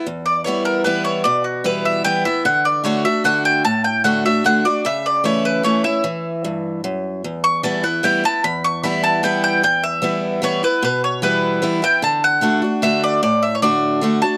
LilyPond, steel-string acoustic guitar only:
\new Staff \with { instrumentName = "Steel-string acoustic guitar" } { \time 3/4 \key e \dorian \tempo 4 = 150 << { r4 <e g b e'>4 <e g b e'>4 | r4 <e g b e'>4 <e g b e'>8 <b e'>8 | r4 <d a d' fis'>8 <d' fis'>8 <d a d' fis'>4 | r4 <d a d' fis'>8 <d' fis'>8 <d a d' fis'>8 <d' fis'>8 |
r4 <e a cis' e'>4 <e a cis' e'>8 <cis' e'>8 | r2. | r4 <e g b e'>8 <b e'>8 <e g b e'>8 <b e'>8 | r4 <e g b e'>4 <e g b e'>4 |
r4 <e g b e'>4 <e g b e'>8 <b e'>8 | r4 <e g b e'>4 <e g b e'>8 <b e'>8 | r4 <d a d' fis'>8 <d' fis'>8 <d a d' fis'>4 | r4 <d a d' fis'>4 <d a d' fis'>8 <d' fis'>8 | } \\ { e,2 r4 | b,2 r4 | d2 r4 | a,2 r4 |
cis2 r4 | e4 g,4 fis,4 | e,2 r4 | e,2 r4 |
e,2 r4 | b,2 r4 | d2 r4 | a,2 r4 | } >> }